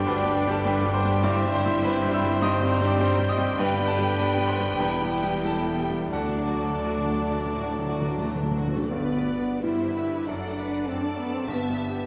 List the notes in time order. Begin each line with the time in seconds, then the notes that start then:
Already playing: G1 G2 G3 D4 G4 A4 B4 C5 D5 G5 A5 B5 C6
0.07 D2 D4 B4 G5 B5
0.24 G3 D4 G4
0.36 D4
0.48 G3 B3 D4 G4 A5
0.52 A4
0.65 G3 D4 G4 B4 G5 B5
0.81 B3 D4
0.85 G3 G4
0.94 D4 C5 C6
1.05 G3 D4 G4
1.11 G4
1.23 G2 G3 C4 E4 C5 D5 E5 D6
1.39 C4
1.45 G3 E4 G4
1.54 E4 C5 C6
1.66 G3 E4 G4
1.83 G3 E4 G4 B4 B5
1.99 C4
2.05 G3 E4 G4
2.13 G3 E5 E6
2.24 G3 E4 G4
2.30 C4
2.41 G2 G3 C4 D#4 D#5 G5 C6 D#6
2.58 G3 C4 G4
2.74 D#4
2.80 G3 C4 G4
2.87 G4 D5 D6
2.99 G3 C4 D#4 G4 C5 G5 C6
3.16 G3 C4 G4
3.29 G3 D#5 D#6
3.38 G3 C4 G4
3.44 C4
3.58 G1 G2 G3 B3 D4 B4 G5 B5
3.75 G3 B3 D4 G4
3.88 D4 A4 A5
3.98 G3 D4 G4
4.07 G4
4.18 G3 D4 G4 D5 G5
4.34 G3 B3 D4
4.39 G4
4.47 G3 C5 C6
4.59 G3 D4 G4
4.65 B3
4.80 E1 E2 G3 E4 B4 G5 B5
4.97 B3
5.02 G3 E4 G4
5.12 E4
5.23 G3 E4 G4
5.29 G4 G5
5.43 G3 E4 G4 A4 A5
5.60 B3
5.66 G3 E4 G4
5.76 G3 G5
5.81 G4
5.90 G3 B3 E4 G4
6.11 D2 D3 A3 D4 F#4 D5 F#5 A5
6.21 D3
6.29 D3 D4
6.37 D3 F#3 F#4 A4
6.46 D3 F#4
6.55 D3
6.62 D3 F#3 F#4 A4
6.72 D3
6.80 D3 F#4
6.85 D3 F#3 F#4 A4
6.98 D3
7.02 D3 D4
7.08 F#3 F#4 A4
7.14 D3
7.21 D3 A3
7.30 D3 F#3 F#4 A4
7.38 D3 D4
7.46 D3
7.54 A2 D3 F#4
7.62 D3
7.70 D3 A4
7.79 D3 F#3 F#4 A4
7.86 D3 F#4
7.94 D3
7.99 D3 F#3 F#4 A4
8.06 D3 D4
8.18 D3
8.23 D3 F#3 A3 F#4 A4
8.35 D3 D4
8.43 D3 F#3 F#4
8.47 D3 A4
8.58 D3 F#4
8.67 D3 F#3 F#4 A4
8.75 D3 A4
8.84 D3
8.92 G1 G2 B3 B4 D5
9.17 G3
9.40 D4
9.63 G2 G3 E4 G4 C5 E5
9.86 D3
9.97 B4
10.08 D4
10.26 F#1 F#2 D4 A4 D5 F#5
10.47 A3
10.58 B4
10.68 D4
10.87 F#2 A3 C4 A4 D5 A5
11.04 D4
11.08 F#3
11.18 B3
11.29 D4
11.34 C4
11.48 G1 G2 B3 G4 E5
11.69 G3
11.90 G4